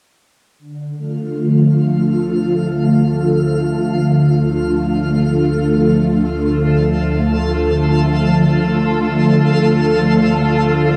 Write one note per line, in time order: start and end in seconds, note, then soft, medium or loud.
0.59 10.96 D2 medium
0.59 10.96 D3 medium
0.59 10.96 F4 medium
0.59 6.08 F5 medium
0.97 10.96 F3 medium
0.97 10.96 A3 medium
1.21 10.96 F4 medium
1.73 10.96 A4 medium
6.05 10.96 A4 medium